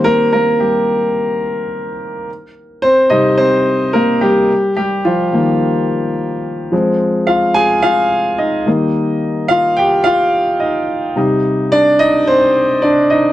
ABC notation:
X:1
M:4/4
L:1/8
Q:1/4=108
K:Eb
V:1 name="Grand piano"
[B,B] [B,B] [G,G]3 z3 | z2 [Cc] e [Cc]2 [B,B] [G,G]- | [G,G] [G,G] [F,F]3 z3 | z2 [Ff] [Aa] [Ff]2 [Ee]2 |
z2 [Ff] [Gg] [Ff]2 [Ee]2 | z2 [Dd] [Ee] [Cc]2 [Dd] [Ee] |]
V:2 name="Grand piano" clef=bass
[E,G,B,]2 z6 | z3 [C,G,E] z4 | z3 [E,G,B,]3 z2 | [F,A,C] z6 [E,G,B,]- |
[E,G,B,]6- [E,G,B,] z | [C,G,E] z6 z |]